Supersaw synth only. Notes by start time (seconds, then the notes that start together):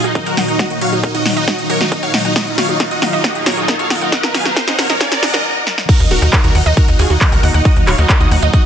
0.04 D#4
0.15 D#4
0.27 F#4 A#4
0.38 D#4
0.48 D#4
0.60 F#4 D#5
0.71 D#4
0.81 C#5 F5
0.93 D#4
1.04 D#4
1.15 F#4 D#5
1.26 D#4
1.37 D#4
1.48 F#4 D#5
1.59 D#4
1.70 A#4 C#5
1.81 D#4
1.92 D#4
2.03 C#5 F5
2.14 D#4
2.25 D#4
2.36 F#4 D#5
2.47 D#4
2.58 C#5 F5
2.69 D#4
2.80 D#4
2.91 F#4 D#5
3.02 D#4
3.13 D#4
3.24 F#4 D#5
3.35 D#4
3.46 A#4 C#5
3.57 D#4
3.68 D#4
3.79 C#5 F5
3.90 D#4
4.01 D#4
4.12 D#5 F#5
4.23 A#4
4.34 F5 G#5
4.46 A#4
4.57 A#4
4.68 D#5 F#5
4.79 A#4
4.90 A#4
5.00 F5 G#5
5.12 A#4
5.23 F#5 A#5
5.34 A#4
5.89 F#4 A#4
6.00 D#4
6.11 F#4 A#4
6.22 D#4
6.33 D#4
6.44 F#4 A#4
6.55 D#4
6.66 D#4
6.77 F#4 A#4
6.88 D#4
6.99 F4 G#4
7.10 D#4
7.21 D#4
7.32 F#4 A#4
7.43 D#4
7.54 D#4
7.65 F#4 D#5
7.76 D#4
7.87 C#5 F5
7.99 D#4
8.10 D#4
8.20 F#4 D#5
8.31 D#4
8.42 D#4
8.54 F#4 D#5